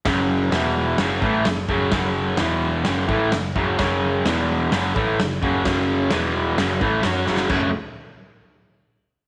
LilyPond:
<<
  \new Staff \with { instrumentName = "Overdriven electric guitar" } { \clef bass \time 4/4 \key fis \minor \tempo 4 = 129 <fis, cis fis>4 <e, b, e>4 <fis, cis fis>8 <a, e a>8 <fis, cis>8 <fis, cis fis>8 | <fis, cis fis>4 <e, b, e>4 <fis, cis fis>8 <a, e a>8 <fis, cis>8 <fis, cis fis>8 | <fis, cis fis>4 <e, b, e>4 <fis, cis fis>8 <a, e a>8 <fis, cis>8 <fis, cis fis>8 | <fis, cis fis>4 <e, b, e>4 <fis, cis fis>8 <a, e a>8 <fis cis' fis'>8 <fis, cis fis>8 |
<fis, cis fis a cis' fis'>8 r2. r8 | }
  \new Staff \with { instrumentName = "Picked electric bass" } { \clef bass \time 4/4 \key fis \minor fis,,4 e,,4 fis,,8 a,,8 fis,,8 fis,,8 | fis,,4 e,,4 fis,,8 a,,8 fis,,8 fis,,8 | fis,,4 e,,4 fis,,8 a,,8 fis,,8 fis,,8 | fis,,4 e,,4 fis,,8 a,,8 fis,8 fis,,8 |
fis,,8 r2. r8 | }
  \new DrumStaff \with { instrumentName = "Drums" } \drummode { \time 4/4 <hho bd sn>4 <hho sn>4 <hho sn>8 bd8 <hho sn>8 bd8 | <hho bd sn>4 <hho sn>4 <hho sn>8 bd8 <hho sn>8 bd8 | <hho bd sn>4 <hho sn>4 <hho sn>8 bd8 <hho sn>8 bd8 | <hho bd sn>4 <hho sn>4 <hho sn>8 bd8 <hho sn>8 sn16 sn16 |
<cymc bd>4 r4 r4 r4 | }
>>